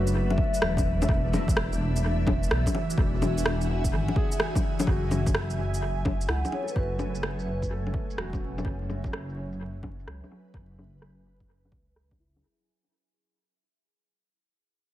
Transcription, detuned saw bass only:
0.00 0.37 F#1 loud
0.62 1.08 E1 medium
1.09 1.46 E1 loud
1.48 2.26 E1 loud
2.27 2.49 E1 medium
2.51 2.65 B1 medium
2.98 3.35 E1 loud
3.38 3.94 E1 loud
3.92 4.07 G#1 medium
4.87 5.24 F#1 loud
5.27 6.04 F#1 loud
6.05 6.27 F#1 medium
6.29 6.43 C#2 medium
6.76 7.13 F#1 loud
7.16 7.93 F#1 loud
8.18 8.64 E1 medium
8.65 9.02 F#1 medium
9.04 9.82 F#1 loud
9.83 10.05 F#1 medium
10.07 10.21 C#2 medium
10.54 10.91 F#1 medium
10.93 11.73 F#1 loud
11.72 12.42 C#2 medium

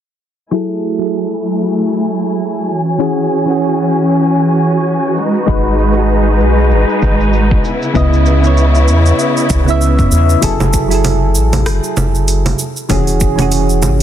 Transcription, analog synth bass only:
5.48 6.42 G#1 medium
6.41 6.73 B1 medium
6.71 6.85 G#1 loud
7.02 7.59 G#1 medium
7.95 8.90 C#2 medium
8.88 9.12 E2 medium
9.50 10.00 C#2 medium
9.99 10.09 F#2 medium
10.12 10.36 E2 medium
10.43 11.37 F#1 medium
11.36 11.68 A1 medium
11.67 11.80 F#1 medium
11.97 12.54 F#1 loud
12.90 13.85 E1 medium
13.83 14.03 G#1 medium

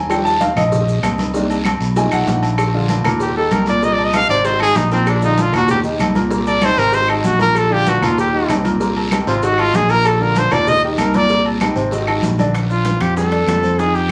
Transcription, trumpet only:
3.22 3.36 G4 medium
3.37 3.54 A4 medium
3.53 3.68 A#4 medium
3.69 3.86 D5 medium
3.84 3.95 D#5 medium
3.93 4.06 D5 loud
4.05 4.17 D#5 medium
4.16 4.29 F5 loud
4.30 4.47 D5 medium
4.45 4.61 C5 medium
4.62 4.78 G#4 loud
4.77 4.92 D#4 medium
4.93 5.11 C4 medium
5.10 5.24 D4 medium
5.24 5.43 D#4 medium
5.42 5.56 F4 medium
5.56 5.70 F#4 medium
5.71 5.80 G4 medium
6.47 6.67 D5 medium
6.65 6.80 C5 loud
6.79 6.96 A#4 loud
6.95 7.10 C5 loud
7.11 7.27 D#4 medium
7.25 7.41 F#4 medium
7.42 7.59 A#4 loud
7.58 7.74 A4 medium
7.73 7.91 G4 loud
7.89 8.06 F#4 medium
8.04 8.19 F4 medium
8.20 8.63 G4 medium
9.28 9.45 F4 medium
9.44 9.62 F#4 loud
9.60 9.77 F4 loud
9.76 9.92 G#4 loud
9.91 10.08 A#4 loud
10.07 10.23 A4 loud
10.22 10.40 A#4 loud
10.39 10.54 C5 loud
10.53 10.70 D5 loud
10.69 10.83 D#5 loud
10.85 11.01 G4 medium
11.00 11.18 A#4 medium
11.16 11.46 D5 loud
12.71 13.03 F4 medium
13.01 13.17 G4 loud
13.17 13.80 A4 medium
13.79 13.97 G#4 medium
13.95 14.11 G4 medium

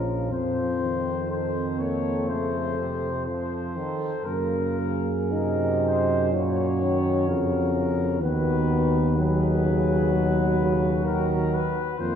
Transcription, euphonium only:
0.00 0.33 C#4 medium
0.32 1.81 C4 medium
1.80 2.32 A#3 medium
2.30 2.79 A3 soft
4.24 5.33 A#3 medium
5.32 6.34 D#4 medium
6.32 8.22 C#4 medium
8.23 9.18 B3 medium
9.17 11.74 F#3 medium
11.98 12.15 A#3 medium

